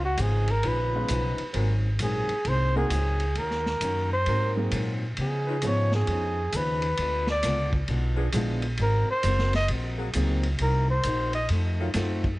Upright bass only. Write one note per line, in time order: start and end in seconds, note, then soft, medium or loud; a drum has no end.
0.00 0.17 C#2 medium
0.17 0.62 G#1 medium
0.64 1.08 A#1 medium
1.09 1.37 B1 medium
1.39 muted upright bass stroke soft
1.54 1.98 G#1 medium
2.00 2.28 A#1 medium
2.29 muted upright bass stroke soft
2.45 2.89 C2 medium
2.90 3.34 C#2 medium
3.36 3.80 D#2 medium
3.80 4.25 F#2 medium
4.27 4.71 G#2 medium
4.72 5.16 A#2 medium
5.18 5.61 C#3 medium
5.62 6.06 G#2 medium
6.07 6.51 F2 medium
6.53 6.97 D#2 medium
6.99 7.42 D2 medium
7.44 7.87 C#2 medium
7.89 8.32 B1 medium
8.34 8.77 A#1 medium
8.80 9.07 G#1 medium
9.09 muted upright bass stroke soft
9.24 9.68 F#1 medium
9.69 10.13 A#1 medium
10.15 10.58 C#2 medium
10.60 11.03 C2 medium
11.05 11.48 A#1 medium
11.50 11.94 F2 medium
11.95 12.39 F#2 medium